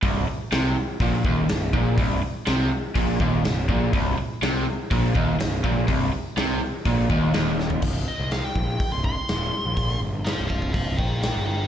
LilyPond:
<<
  \new Staff \with { instrumentName = "Lead electric guitar" } { \time 4/4 \key c \minor \tempo 4 = 123 r1 | r1 | r1 | r1 |
r8 ees''8 f''16 g''4 c'''16 c'''4.~ | c'''8 r8 <c'' f''>8 <c'' f''>8 <c'' f''>8 <ees'' g''>8 <ees'' g''>8 <ees'' g''>8 | }
  \new Staff \with { instrumentName = "Overdriven electric guitar" } { \clef bass \time 4/4 \key c \minor c,8 r8 c8 r8 bes,8 ees,8 c,8 bes,8 | c,8 r8 c8 r8 bes,8 ees,8 c,8 bes,8 | c,8 r8 c8 r8 bes,8 ees,8 c,8 bes,8 | c,8 r8 c8 r8 bes,8 ees,8 ees,4 |
r1 | r1 | }
  \new Staff \with { instrumentName = "Picked electric bass" } { \clef bass \time 4/4 \key c \minor c,,8 r8 c,8 r8 bes,,8 ees,,8 c,,8 bes,,8 | c,,8 r8 c,8 r8 bes,,8 ees,,8 c,,8 bes,,8 | c,,8 r8 c,8 r8 bes,,8 ees,,8 c,,8 bes,,8 | c,,8 r8 c,8 r8 bes,,8 ees,,8 ees,,4 |
c,,8 r16 c,8 r16 bes,,8 r16 c,,8 r16 ees,,8 r16 bes,,16~ | bes,,8 g,,8. c,,8. c,,8 bes,,8. g,,8. | }
  \new DrumStaff \with { instrumentName = "Drums" } \drummode { \time 4/4 <hho bd>4 <hho sn>4 <hho bd>8 bd8 <hho sn>8 bd8 | <hho bd>4 <hho sn>4 <hho bd>8 bd8 <hho sn>8 bd8 | <hho bd>4 <hho sn>4 <hho bd>8 bd8 <hho sn>8 bd8 | <hho bd>4 <hho sn>4 <hho bd>8 bd8 <hho sn>8 sn16 tomfh16 |
<cymc bd>4 <hho sn>8 bd8 <hho bd>8 bd8 <hho sn>4 | <hho bd>4 <hho sn>8 bd16 bd16 <hho bd>8 bd8 <hho sn>4 | }
>>